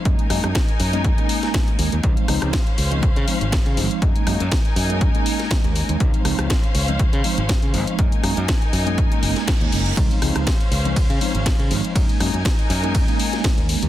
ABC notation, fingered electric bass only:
X:1
M:4/4
L:1/16
Q:"Swing 16ths" 1/4=121
K:Gblyd
V:1 name="Fingered electric bass" clef=bass
G,, z G,, G,, z2 G,,3 z4 z E,, E,, | D,, z D,, D,, z2 D,,3 D, z A,,, z D, A,,, z | G,, z G,, G,, z2 G,,3 z4 E,, z E,, | D,, z D,, D,, z2 D,,3 D, z A,,, z D, A,,, z |
G,, z G,, G,, z2 G,,3 z G,,, z2 E,, G,,, z | D,, z D,, D,, z2 D,,3 D, z A,,, z D, A,,, z | G,, z G,, G,, z2 G,,3 z4 E,, z E,, |]